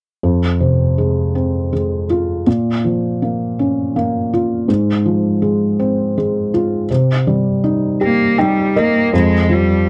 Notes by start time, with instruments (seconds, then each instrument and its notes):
0.23 felt piano F2
0.60 felt piano C3
0.98 felt piano G#3
1.35 felt piano C4
1.73 felt piano G#3
2.10 felt piano F4
2.47 felt piano A#2
2.85 felt piano F3
3.22 felt piano A#3
3.59 felt piano C#4
3.96 felt piano A#3
4.33 felt piano F4
4.68 felt piano G#2
5.06 felt piano F3
5.42 felt piano G#3
5.79 felt piano C4
6.18 felt piano G#3
6.54 felt piano F4
6.90 felt piano C3
7.27 felt piano G3
7.64 felt piano D#4
8.01 cello A#3, felt piano G4
8.38 cello G3, felt piano D#4 G5
8.76 cello A#3, felt piano A#4 D#5
9.13 felt piano F2, cello G#3
9.49 felt piano F3, cello G3